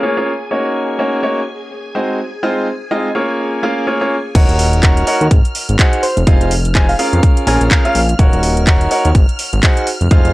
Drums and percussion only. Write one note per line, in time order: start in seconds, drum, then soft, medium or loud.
4.35 kick loud
4.35 closed hi-hat medium
4.35 crash loud
4.49 closed hi-hat soft
4.59 open hi-hat loud
4.73 closed hi-hat soft
4.83 kick loud
4.83 clap loud
4.83 closed hi-hat medium
4.97 closed hi-hat soft
5.07 open hi-hat loud
5.21 closed hi-hat soft
5.31 kick loud
5.31 closed hi-hat medium
5.45 closed hi-hat soft
5.55 open hi-hat loud
5.69 closed hi-hat soft
5.79 kick loud
5.79 clap loud
5.79 closed hi-hat medium
5.93 closed hi-hat soft
6.03 open hi-hat loud
6.17 closed hi-hat soft
6.27 kick loud
6.27 closed hi-hat medium
6.41 closed hi-hat soft
6.51 open hi-hat loud
6.65 closed hi-hat soft
6.75 kick loud
6.75 clap loud
6.75 closed hi-hat medium
6.89 open hi-hat medium
6.99 open hi-hat loud
7.13 closed hi-hat soft
7.23 kick loud
7.23 closed hi-hat medium
7.37 closed hi-hat soft
7.47 open hi-hat loud
7.61 closed hi-hat soft
7.71 kick loud
7.71 clap loud
7.71 closed hi-hat medium
7.85 closed hi-hat soft
7.95 open hi-hat loud
8.09 closed hi-hat soft
8.19 kick loud
8.19 closed hi-hat medium
8.33 closed hi-hat soft
8.43 open hi-hat loud
8.57 closed hi-hat soft
8.67 kick loud
8.67 clap loud
8.67 closed hi-hat medium
8.81 closed hi-hat soft
8.91 open hi-hat loud
9.05 closed hi-hat soft
9.15 kick loud
9.15 closed hi-hat medium
9.29 closed hi-hat soft
9.39 open hi-hat loud
9.53 closed hi-hat soft
9.63 kick loud
9.63 clap loud
9.63 closed hi-hat medium
9.77 closed hi-hat soft
9.87 open hi-hat loud
10.01 closed hi-hat soft
10.11 kick loud
10.11 closed hi-hat medium
10.25 closed hi-hat soft